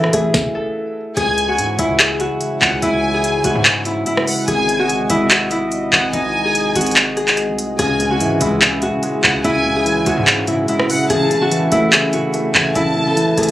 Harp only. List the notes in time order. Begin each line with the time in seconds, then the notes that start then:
Already playing: E4 F#4 A4
0.13 G#4
0.55 A4
1.17 G#4
1.48 F#4
1.79 E4
2.00 G#4
2.20 F#4
2.82 E4
3.14 G#4
3.44 F#4
3.86 E4
4.06 E4
4.48 G#4
4.79 F#4
5.10 E4
5.31 F#4
5.51 E4
6.13 D#4
6.45 G#4
6.75 F#4
7.17 G#4
7.79 G#4
8.10 F#4
8.41 E4
8.62 G#4
8.82 F#4
9.44 E4
9.76 G#4
10.06 F#4
10.48 E4
10.68 E4
11.10 G#4
11.41 F#4
11.72 E4
11.93 G#4
12.13 F#4
12.75 E4
13.07 A4
13.38 G#4